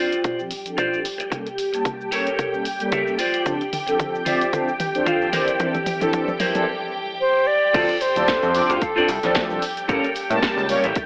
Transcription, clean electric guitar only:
0.00 0.39 F4 medium
0.00 0.39 C5 medium
0.00 0.40 D5 medium
0.77 0.98 F4 medium
0.77 0.99 C5 medium
0.77 0.99 D5 medium
1.18 muted clean electric guitar stroke loud
1.30 muted clean electric guitar stroke loud
1.46 muted clean electric guitar stroke soft
1.73 muted clean electric guitar stroke medium
1.84 muted clean electric guitar stroke soft
2.11 2.53 G4 medium
2.11 2.54 A4 medium
2.11 2.54 A#4 medium
2.11 2.54 C#5 medium
2.92 3.13 G4 medium
2.92 3.13 A4 medium
2.92 3.13 A#4 medium
2.92 3.14 E5 medium
3.18 3.51 F4 medium
3.18 3.52 C5 medium
3.18 3.52 D5 loud
3.60 muted clean electric guitar stroke soft
3.87 muted clean electric guitar stroke medium
3.99 muted clean electric guitar stroke soft
4.25 4.67 F4 medium
4.25 4.68 C5 medium
4.25 4.68 E5 medium
5.05 5.27 F4 medium
5.05 5.27 C5 medium
5.05 5.28 F5 medium
5.32 5.66 E4 medium
5.32 5.66 A#4 medium
5.32 5.66 C5 loud
5.74 muted clean electric guitar stroke soft
6.00 muted clean electric guitar stroke medium
6.12 muted clean electric guitar stroke soft
6.39 6.67 E4 medium
6.39 6.67 A#4 medium
6.39 6.68 C5 medium
7.74 7.95 F4 loud
7.74 7.95 A4 loud
7.74 7.95 C5 loud
7.74 7.96 D5 loud
8.15 muted clean electric guitar stroke medium
8.69 8.81 F4 medium
8.69 8.81 A4 medium
8.69 8.82 C5 medium
8.69 8.82 F5 loud
8.96 9.08 F4 loud
8.96 9.08 A4 loud
8.96 9.09 C5 loud
8.96 9.09 D5 loud
9.22 muted clean electric guitar stroke soft
9.34 muted clean electric guitar stroke medium
9.49 muted clean electric guitar stroke soft
9.88 10.09 G4 loud
9.88 10.09 A4 loud
9.88 10.10 A#4 loud
9.88 10.10 C#5 loud
10.30 muted clean electric guitar stroke medium
10.83 10.96 G4 medium
10.83 10.96 A4 medium
10.83 10.96 A#4 medium
10.83 10.96 E5 loud

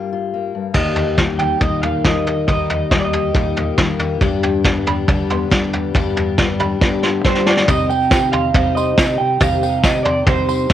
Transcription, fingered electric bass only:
0.74 1.58 D#2 medium
1.61 2.02 D#2 medium
2.04 2.46 D#3 medium
2.48 3.31 D#2 loud
3.35 3.76 D#2 medium
3.78 4.19 D#3 medium
4.21 5.04 G2 loud
5.08 5.49 G2 loud
5.51 5.93 G3 medium
5.94 6.77 G2 loud
6.81 7.22 G2 loud
7.25 7.66 G3 loud
7.68 8.51 C3 loud
8.54 8.95 C3 loud
8.98 9.18 C3 loud
9.20 9.40 C3 medium
9.41 10.23 C3 medium
10.27 10.68 C3 loud
10.70 10.73 C3 loud

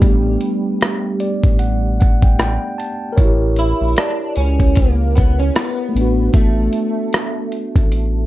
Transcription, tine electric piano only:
0.00 3.11 A3 medium
0.00 3.13 B3 medium
0.00 3.15 D4 medium
0.08 3.17 G4 medium
1.20 1.57 D5 medium
1.59 1.96 F#5 medium
2.00 2.21 F#5 medium
2.22 2.37 G5 medium
2.40 2.76 G5 medium
2.78 3.15 A5 medium
3.13 5.87 A#4 medium
3.13 5.89 C#5 medium
3.20 5.91 E4 medium
3.25 5.93 G4 medium
5.89 8.27 A3 medium
5.93 8.27 B3 medium
5.97 8.27 D4 medium
5.97 8.27 F#4 medium

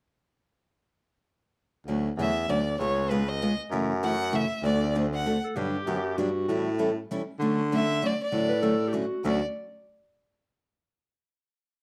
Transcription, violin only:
2.21 2.51 E5 medium
2.50 2.79 D5 medium
2.80 3.11 C#5 medium
3.10 3.30 B4 medium
3.29 3.60 D#5 medium
4.04 4.37 F#5 medium
4.36 4.64 E5 medium
4.65 4.93 D5 medium
5.14 5.42 F#5 medium
7.75 8.08 E5 medium
8.06 8.22 D5 medium
8.23 8.91 D5 medium
9.27 9.43 D5 medium

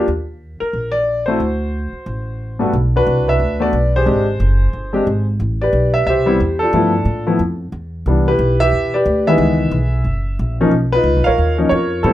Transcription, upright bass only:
0.08 0.58 D#2 medium
0.62 muted upright bass stroke soft
0.73 1.37 A#1 medium
1.40 1.90 D2 medium
1.93 muted upright bass stroke soft
2.06 2.70 A1 medium
2.73 3.06 B1 medium
3.07 3.39 C2 medium
3.40 3.72 D2 medium
3.73 4.06 B1 medium
4.06 4.39 G#1 medium
4.40 4.72 F#1 medium
4.73 5.06 G1 medium
5.07 5.39 G#1 medium
5.40 5.72 A1 medium
5.73 6.05 B1 medium
6.06 6.39 C2 medium
6.40 6.72 E2 medium
6.73 7.05 G2 medium
7.05 7.38 A2 medium
7.39 7.72 F2 medium
7.72 8.05 E2 medium
8.06 8.38 C2 medium
8.39 8.71 B1 medium
8.72 9.04 E2 medium
9.06 9.37 D2 medium
9.38 9.71 C#2 medium
9.71 10.04 B1 medium
10.04 10.37 F#1 medium
10.39 10.71 A#1 medium
10.71 11.03 B1 medium
11.04 11.16 C#2 medium
11.16 11.27 B1 medium
11.27 11.37 A#1 medium
11.38 11.70 D#2 medium
11.71 12.03 F2 medium
12.04 12.13 A2 medium

